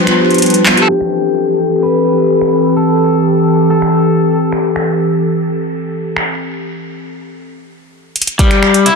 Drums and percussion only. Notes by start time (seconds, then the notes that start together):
0.07 finger snap, closed hi-hat
0.31 closed hi-hat
0.34 closed hi-hat
0.38 closed hi-hat
0.42 closed hi-hat
0.46 closed hi-hat
0.50 closed hi-hat
0.54 closed hi-hat
0.66 clap
0.77 closed hi-hat
1.01 finger snap
2.41 finger snap
3.82 finger snap
4.52 finger snap
4.76 finger snap
6.17 finger snap
8.16 closed hi-hat
8.22 closed hi-hat
8.27 closed hi-hat
8.39 kick, closed hi-hat
8.51 finger snap, closed hi-hat
8.63 finger snap
8.74 closed hi-hat
8.86 closed hi-hat